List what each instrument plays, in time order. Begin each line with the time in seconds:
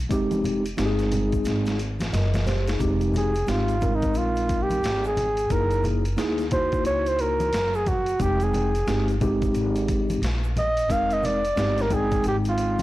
Already playing: upright bass C2
0.09 upright bass F1, tine electric piano G#3 C4 D#4 G4, kick, closed hi-hat, shaker
0.31 closed hi-hat, high conga, shaker
0.44 closed hi-hat, high conga, low conga, shaker
0.65 closed hi-hat, shaker
0.77 upright bass G1, tine electric piano G#3 C4 D#4 G4, snare, closed hi-hat, shaker
0.85 tine electric piano G#4
0.99 snare, closed hi-hat, shaker
1.12 closed hi-hat, low conga, shaker
1.32 kick, closed hi-hat, shaker
1.45 upright bass G#1, snare, closed hi-hat, shaker
1.66 snare, closed hi-hat, shaker
1.79 closed hi-hat, shaker
2.00 snare, closed hi-hat, high conga, shaker
2.13 upright bass F#1, tine electric piano A#4 D#5, snare, closed hi-hat, shaker
2.34 snare, closed hi-hat, high conga, shaker
2.46 tine electric piano G4 C5, snare, closed hi-hat, high conga, low conga, shaker
2.68 tine electric piano D#4 G#4, snare, closed hi-hat, shaker
2.79 upright bass F1, tine electric piano G#3 C4 D#4 G4, kick, closed hi-hat, shaker
3.01 closed hi-hat, shaker
3.14 flugelhorn G#4, closed hi-hat, high conga, low conga, shaker
3.34 closed hi-hat, shaker
3.47 upright bass G#1, tine electric piano G#3 C4 D#4 G4, flugelhorn F4, snare, closed hi-hat, shaker
3.68 closed hi-hat, shaker
3.81 tine electric piano G3 C4 D#4 A#4, kick, closed hi-hat, low conga, shaker
3.87 tine electric piano G#3
3.95 flugelhorn D#4
4.02 kick, closed hi-hat, shaker
4.14 upright bass A#1, flugelhorn F4, closed hi-hat, shaker
4.36 closed hi-hat, shaker
4.49 kick, closed hi-hat, shaker
4.63 flugelhorn G4
4.70 closed hi-hat, high conga, shaker
4.83 upright bass G#1, snare, closed hi-hat, shaker
5.04 flugelhorn G#4, shaker
5.17 closed hi-hat, high conga, low conga, shaker
5.37 closed hi-hat, shaker
5.50 upright bass F#1, tine electric piano A#3 D#4 E4 G#4, flugelhorn A#4, kick, closed hi-hat, shaker
5.70 closed hi-hat, shaker
5.84 closed hi-hat, high conga, low conga, shaker
6.05 closed hi-hat, shaker
6.17 tine electric piano A#3 D#4 E4 G#4, snare, closed hi-hat, shaker
6.38 snare, closed hi-hat, shaker
6.51 tine electric piano A#3 D#4 E4 F#4, flugelhorn C5, kick, closed hi-hat, low conga, shaker
6.72 kick, closed hi-hat, shaker
6.85 upright bass C#2, flugelhorn C#5, closed hi-hat, shaker
7.06 flugelhorn C5, closed hi-hat, shaker
7.19 flugelhorn A#4, closed hi-hat, shaker
7.40 closed hi-hat, high conga, shaker
7.53 upright bass F#1, snare, closed hi-hat, shaker
7.74 flugelhorn G#4, shaker
7.86 flugelhorn F#4, kick, closed hi-hat, high conga, low conga, shaker
8.06 closed hi-hat, shaker
8.19 upright bass F1, tine electric piano G#3 C4 D#4 G5, flugelhorn G4, kick, closed hi-hat, shaker
8.40 flugelhorn G#4, closed hi-hat, shaker
8.53 closed hi-hat, high conga, low conga, shaker
8.75 closed hi-hat, shaker
8.87 upright bass G1, tine electric piano G#3 C4 D#4 G4, snare, closed hi-hat, shaker
9.08 closed hi-hat, shaker
9.21 tine electric piano G#3 C4 D#4 G4, kick, closed hi-hat, low conga, shaker
9.42 kick, closed hi-hat, shaker
9.54 upright bass G#1, closed hi-hat, shaker
9.76 closed hi-hat, shaker
9.88 kick, closed hi-hat, shaker
10.10 closed hi-hat, high conga, shaker
10.22 upright bass A#1, snare, closed hi-hat, shaker
10.44 shaker
10.56 flugelhorn D#5, closed hi-hat, high conga, low conga, shaker
10.77 closed hi-hat, shaker
10.89 upright bass F1, tine electric piano G#3 C4 D#4 A#4, flugelhorn F5, kick, closed hi-hat, shaker
11.10 flugelhorn D#5, closed hi-hat, shaker
11.23 flugelhorn D5, closed hi-hat, high conga, low conga, shaker
11.45 closed hi-hat, shaker
11.56 upright bass G1, tine electric piano G#3 C4 D#4 G4, snare, closed hi-hat, shaker
11.78 flugelhorn A#4, snare, closed hi-hat, shaker
11.90 tine electric piano G#3 C4 D#4 G5, kick, closed hi-hat, low conga, shaker
11.94 flugelhorn G#4
12.11 kick, closed hi-hat, shaker
12.24 upright bass G#1, closed hi-hat, shaker
12.28 flugelhorn G4
12.45 flugelhorn F4, closed hi-hat, shaker
12.58 closed hi-hat, shaker
12.79 closed hi-hat, high conga, shaker